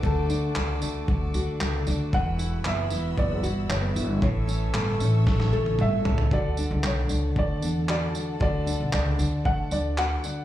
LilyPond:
<<
  \new Staff \with { instrumentName = "String section" } { \time 4/4 \key d \major \tempo 4 = 115 << { <fis' a'' d'''>1 | <fis' b'' e'''>1 | <a' cis''' e'''>1 | <a' fis'' a''>1~ |
<a' fis'' a''>1 | } \\ { d''1 | e''1~ | e''1 | d'1~ |
d'1 | } >> }
  \new Staff \with { instrumentName = "Upright piano" } { \time 4/4 \key d \major a'2 r2 | fis''4 e''4 d''4 cis''4 | cis''2 r4 e''4 | d''4 cis''4 d''4 d''4 |
d''4 d''4 fis''8 d''8 fis''4 | }
  \new Staff \with { instrumentName = "Steel-string acoustic guitar" } { \time 4/4 \key d \major <a d' fis'>8 d'8 fis'8 a8 fis'8 d'8 a8 fis'8 | <e fis'>8 e'8 fis'8 b8 fis'8 e'8 b8 fis'8 | <e a'>8 cis'8 a'8 a8 a'8 cis'8 a8 a'8 | r1 |
r1 | }
  \new Staff \with { instrumentName = "Nylon-string guitar" } { \time 4/4 \key d \major <d a d' fis'>8 d'8 a8 d'8 a8 fis'8 a8 d'8 | e,8 e'8 b8 e'8 b8 fis'8 b8 e'8 | a,8 cis'8 a8 cis'8 a8 a'8 a8 cis'8 | <d fis'>8 d'8 a8 d'8 a8 d'8 fis'8 d'8 |
<d fis'>8 d'8 a8 d'8 a8 d'8 fis'8 d'8 | }
  \new Staff \with { instrumentName = "Upright bass" } { \clef bass \time 4/4 \key d \major d,4 cis,8 d,8 d,8 d,8 cis,8 d,8 | e,,4 fis,,8 e,,8 fis,,8 g,,8 fis,,8 g,,8 | a,,4 g,,8 a,,8 a,,8 a,,8 g,,8 cis,8 | d,8. cis,16 b,,8 cis,8 d,8 e,4 r8 |
d,8. b,,16 cis,8 d,8. r16 d,4 r8 | }
  \new DrumStaff \with { instrumentName = "Drums" } \drummode { \time 4/4 bd8 tamb8 hc8 tamb8 bd8 tamb8 hc8 tamb8 | bd8 tamb8 hc8 tamb8 bd8 tamb8 hc8 tamb8 | bd8 tamb8 hc8 tamb8 <bd sn>16 sn8 tommh16 toml8 tomfh16 tomfh16 | bd8 tamb8 hc8 tamb8 bd8 tamb8 hc8 tamb8 |
bd8 tamb8 hc8 tamb8 bd8 tamb8 hc8 tamb8 | }
>>